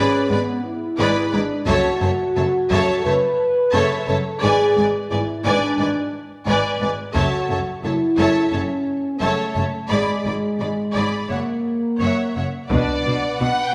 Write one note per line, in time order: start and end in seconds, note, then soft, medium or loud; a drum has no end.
0.00 0.26 C#4 medium
0.00 0.28 G#4 medium
0.00 0.28 B4 medium
0.00 0.27 D5 medium
0.00 0.27 B5 medium
0.29 0.38 G#1 soft
0.29 0.37 G#2 soft
0.29 0.64 B3 medium
0.29 0.38 G#4 soft
0.29 0.39 B4 soft
0.29 0.39 D5 soft
0.29 0.40 B5 soft
0.64 1.31 E4 medium
0.98 1.07 G#1 medium
0.98 1.07 G#2 medium
0.98 1.30 G#4 medium
0.98 1.30 B4 medium
0.98 1.31 D5 medium
0.98 1.31 B5 medium
1.32 1.41 G#1 soft
1.32 1.41 G#2 soft
1.32 1.68 D4 medium
1.32 1.41 G#4 soft
1.32 1.40 B4 soft
1.32 1.41 D5 medium
1.32 1.41 B5 soft
1.66 1.75 F#1 medium
1.66 1.74 F#2 medium
1.66 3.06 F#4 medium
1.66 1.99 A4 medium
1.66 1.99 C#5 medium
1.66 1.99 E5 medium
1.66 2.00 A5 medium
1.66 taiko medium
2.01 2.10 F#1 soft
2.01 2.09 F#2 soft
2.01 2.10 A4 soft
2.01 2.09 C#5 soft
2.01 2.10 E5 soft
2.01 2.10 A5 soft
2.36 2.45 F#1 soft
2.36 2.44 F#2 soft
2.36 2.44 A4 soft
2.36 2.44 C#5 soft
2.36 2.45 E5 soft
2.36 2.45 A5 soft
2.71 2.79 F#1 medium
2.71 2.79 F#2 medium
2.71 3.03 A4 medium
2.71 3.03 C#5 medium
2.71 3.03 E5 medium
2.71 3.04 A5 medium
2.71 taiko soft
3.05 3.14 F#1 soft
3.05 3.14 F#2 soft
3.05 3.15 A4 soft
3.05 4.08 B4 medium
3.05 3.14 C#5 soft
3.05 3.13 E5 soft
3.05 3.14 A5 soft
3.72 3.83 F#1 medium
3.72 3.81 F#2 medium
3.72 4.06 A4 medium
3.72 4.06 C#5 medium
3.72 4.05 E5 medium
3.72 4.05 A5 medium
4.08 4.17 F#1 soft
4.08 4.17 F#2 soft
4.08 4.42 A4 medium
4.08 4.16 A4 medium
4.08 4.16 C#5 soft
4.08 4.16 E5 soft
4.08 4.16 A5 medium
4.42 4.51 G#1 medium
4.42 4.50 G#2 medium
4.42 4.93 G#4 medium
4.42 4.75 B4 medium
4.42 4.74 D5 medium
4.42 4.75 G#5 medium
4.76 4.85 G#1 soft
4.76 4.84 G#2 soft
4.76 4.85 B4 soft
4.76 4.85 D5 soft
4.76 4.85 G#5 soft
5.10 5.20 G#1 soft
5.10 5.19 G#2 soft
5.10 5.44 E4 medium
5.10 5.19 B4 soft
5.10 5.19 D5 soft
5.10 5.20 D5 soft
5.10 5.20 G#5 soft
5.44 5.53 G#1 medium
5.44 5.52 G#2 medium
5.44 6.13 D4 medium
5.44 5.77 B4 medium
5.44 5.77 D5 medium
5.44 5.77 G#5 medium
5.78 5.87 G#1 soft
5.78 5.86 G#2 soft
5.78 5.88 B4 soft
5.78 5.88 D5 soft
5.78 5.88 G#5 medium
6.46 6.56 G#1 medium
6.46 6.54 G#2 medium
6.46 6.80 B4 medium
6.46 6.79 D5 medium
6.46 6.80 D5 medium
6.46 6.79 G#5 medium
6.80 6.90 G#1 soft
6.80 6.88 G#2 soft
6.80 6.90 B4 soft
6.80 6.90 D5 soft
6.80 6.90 D5 medium
6.80 6.90 G#5 soft
7.14 7.23 F#1 medium
7.14 7.22 F#2 medium
7.14 7.79 F#4 medium
7.14 7.47 A4 medium
7.14 7.48 C#5 medium
7.14 7.47 E5 medium
7.14 7.47 A5 medium
7.14 taiko medium
7.50 7.58 F#1 soft
7.50 7.58 F#2 soft
7.50 7.59 A4 soft
7.50 7.58 C#5 soft
7.50 7.58 E5 soft
7.50 7.58 A5 soft
7.84 7.92 F#1 soft
7.84 7.92 F#2 soft
7.84 8.53 E4 medium
7.84 7.93 A4 soft
7.84 7.93 C#5 soft
7.84 7.92 E5 soft
7.84 7.93 A5 soft
8.18 8.26 F#1 medium
8.18 8.27 F#2 medium
8.18 8.50 A4 medium
8.18 8.50 C#5 medium
8.18 8.50 E5 medium
8.18 8.50 A5 medium
8.51 8.61 F#1 soft
8.51 8.61 F#2 soft
8.51 9.19 C#4 medium
8.51 8.60 A4 soft
8.51 8.60 C#5 soft
8.51 8.61 E5 soft
8.51 8.60 A5 soft
9.20 9.29 F#1 medium
9.20 9.29 F#2 soft
9.20 9.89 A3 medium
9.20 9.53 A4 medium
9.20 9.53 C#5 soft
9.20 9.53 E5 soft
9.20 9.53 A5 soft
9.54 9.63 F#1 soft
9.54 9.64 F#2 soft
9.54 9.64 A4 soft
9.54 9.64 C#5 soft
9.54 9.62 E5 soft
9.54 9.62 A5 soft
9.89 9.99 G#1 soft
9.89 9.99 G#2 soft
9.89 11.27 G#3 medium
9.89 10.23 G#4 soft
9.89 10.22 D5 soft
9.89 10.23 D5 soft
9.89 10.22 B5 soft
10.25 10.33 G#1 soft
10.25 10.35 G#2 soft
10.25 10.34 G#4 soft
10.25 10.33 D5 soft
10.25 10.34 D5 soft
10.25 10.33 B5 soft
10.59 10.67 G#1 soft
10.59 10.69 G#2 soft
10.59 10.68 G#4 soft
10.59 10.67 D5 soft
10.59 10.68 D5 soft
10.59 10.69 B5 soft
10.94 11.03 G#1 soft
10.94 11.04 G#2 soft
10.94 11.27 G#4 soft
10.94 11.27 D5 soft
10.94 11.28 B5 soft
11.29 11.38 F#1 soft
11.29 11.39 F#2 soft
11.29 12.34 A#3 soft
11.29 11.37 C#5 soft
11.29 11.39 E5 soft
11.29 11.39 F#5 soft
12.00 12.09 F#1 soft
12.00 12.10 F#2 soft
12.00 12.33 C#5 soft
12.00 12.34 E5 soft
12.00 12.34 F#5 soft
12.36 12.44 F#1 soft
12.36 12.45 F#2 soft
12.36 12.44 C#5 soft
12.36 12.45 E5 soft
12.36 12.44 F#5 soft
12.70 12.79 B1 soft
12.70 12.80 B2 soft
12.70 12.95 F#3 soft
12.70 12.95 D4 soft
12.70 13.03 D4 soft
12.70 13.03 B4 soft
12.70 13.75 B4 soft
12.70 13.36 D5 medium
12.70 13.75 F#5 soft
12.70 taiko medium
13.05 13.14 B1 soft
13.05 13.13 B2 soft
13.05 13.14 D4 soft
13.05 13.14 B4 soft
13.40 13.48 B1 soft
13.40 13.48 B2 soft
13.40 13.48 D4 soft
13.40 13.48 F#4 soft
13.40 13.63 F#5 medium
13.65 13.75 G5 medium